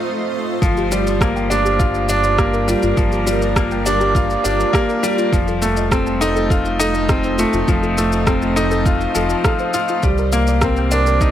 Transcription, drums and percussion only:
0.62 kick loud
0.62 shaker soft
0.77 shaker soft
0.92 shaker medium
1.07 shaker soft
1.21 kick loud
1.21 cross-stick loud
1.21 shaker soft
1.36 shaker soft
1.51 shaker medium
1.66 shaker soft
1.80 kick loud
1.80 shaker soft
1.94 shaker soft
2.09 shaker medium
2.24 shaker soft
2.38 kick loud
2.38 cross-stick loud
2.38 shaker soft
2.53 shaker soft
2.68 shaker medium
2.83 shaker soft
2.97 kick loud
2.97 shaker soft
3.12 shaker soft
3.27 shaker medium
3.42 shaker soft
3.56 kick loud
3.56 cross-stick loud
3.56 shaker soft
3.71 shaker soft
3.86 shaker medium
4.01 shaker soft
4.15 kick loud
4.15 shaker soft
4.30 shaker soft
4.45 shaker medium
4.60 shaker soft
4.74 kick loud
4.74 cross-stick loud
4.74 shaker soft
4.89 shaker soft
5.03 shaker medium
5.18 shaker soft
5.33 kick loud
5.33 shaker soft
5.48 shaker soft
5.62 shaker medium
5.77 shaker soft
5.91 kick loud
5.91 cross-stick loud
5.91 shaker soft
6.06 shaker soft
6.21 shaker medium
6.36 shaker soft
6.50 kick loud
6.50 shaker soft
6.65 shaker soft
6.80 shaker medium
6.94 shaker soft
7.09 kick loud
7.09 cross-stick loud
7.09 shaker soft
7.24 shaker soft
7.38 shaker medium
7.53 shaker soft
7.68 kick loud
7.68 shaker soft
7.83 shaker soft
7.98 shaker medium
8.12 shaker soft
8.27 kick loud
8.27 cross-stick loud
8.27 shaker soft
8.42 shaker soft
8.57 shaker medium
8.71 shaker soft
8.86 kick loud
8.86 shaker soft
9.01 shaker soft
9.15 shaker medium
9.30 shaker soft
9.44 kick loud
9.44 cross-stick loud
9.44 shaker soft
9.59 shaker soft
9.74 shaker medium
9.88 shaker soft
10.03 kick loud
10.03 shaker soft
10.18 shaker soft
10.32 shaker medium
10.47 shaker soft
10.61 kick loud
10.61 cross-stick loud
10.61 shaker soft
10.77 shaker soft
10.91 shaker medium
11.07 shaker soft
11.21 kick loud
11.21 shaker soft

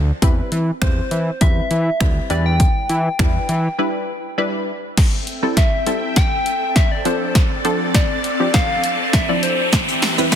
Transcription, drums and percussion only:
0.22 kick loud
0.22 closed hi-hat medium
0.52 closed hi-hat medium
0.82 finger snap loud
0.82 kick loud
0.82 closed hi-hat medium
1.11 closed hi-hat medium
1.41 kick loud
1.41 closed hi-hat medium
1.71 closed hi-hat medium
2.00 finger snap loud
2.00 kick loud
2.00 closed hi-hat medium
2.30 closed hi-hat medium
2.60 kick loud
2.60 closed hi-hat medium
2.89 closed hi-hat medium
3.19 finger snap loud
3.19 kick loud
3.19 closed hi-hat medium
3.49 closed hi-hat medium
4.97 kick loud
4.97 snare medium
4.97 closed hi-hat medium
4.97 crash medium
5.27 closed hi-hat medium
5.57 kick loud
5.57 snare medium
5.57 closed hi-hat medium
5.86 closed hi-hat medium
6.16 kick loud
6.16 snare medium
6.16 closed hi-hat medium
6.46 closed hi-hat medium
6.76 kick loud
6.76 snare medium
6.76 closed hi-hat medium
7.05 closed hi-hat medium
7.35 kick loud
7.35 snare medium
7.35 closed hi-hat medium
7.65 closed hi-hat medium
7.95 kick loud
7.95 snare medium
7.95 closed hi-hat medium
8.24 closed hi-hat medium
8.54 kick loud
8.54 snare medium
8.54 closed hi-hat medium
8.84 closed hi-hat medium
9.13 kick loud
9.13 snare medium
9.13 closed hi-hat medium
9.43 closed hi-hat medium
9.73 kick loud
9.73 snare medium
9.73 closed hi-hat medium
9.73 shaker medium
9.88 shaker medium
10.02 snare medium
10.02 open hi-hat medium
10.02 shaker medium
10.18 shaker medium
10.18 shaker soft
10.32 kick loud
10.32 snare medium
10.32 closed hi-hat medium
10.32 shaker medium

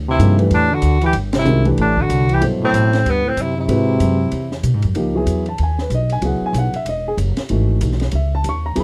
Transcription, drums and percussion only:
0.20 hi-hat pedal soft
0.20 ride medium
0.39 ride soft
0.51 ride medium
0.82 hi-hat pedal soft
0.82 ride medium
1.01 ride soft
1.13 ride medium
1.33 snare medium
1.33 ride medium
1.45 hi-hat pedal medium
1.65 ride soft
1.78 ride medium
1.97 kick medium
2.10 hi-hat pedal medium
2.10 ride medium
2.29 ride soft
2.42 ride medium
2.74 hi-hat pedal medium
2.74 ride medium
2.93 snare soft
2.93 ride soft
3.06 ride medium
3.37 hi-hat pedal soft
3.37 ride medium
3.69 ride medium
4.00 hi-hat pedal soft
4.00 ride medium
4.31 ride medium
4.52 snare soft
4.63 hi-hat pedal soft
4.63 ride medium
4.82 ride medium
4.95 ride medium
5.27 hi-hat pedal soft
5.27 ride medium
5.46 ride soft
5.58 ride medium
5.78 snare soft
5.90 hi-hat pedal soft
5.90 ride medium
6.10 ride soft
6.22 ride medium
6.54 hi-hat pedal soft
6.54 ride medium
6.74 ride soft
6.86 ride medium
7.18 hi-hat pedal soft
7.18 ride medium
7.37 snare soft
7.37 ride soft
7.49 ride medium
7.81 hi-hat pedal medium
7.81 ride medium
7.92 snare soft
8.00 snare soft
8.00 ride soft
8.11 ride medium
8.44 hi-hat pedal medium
8.44 ride medium
8.76 ride medium

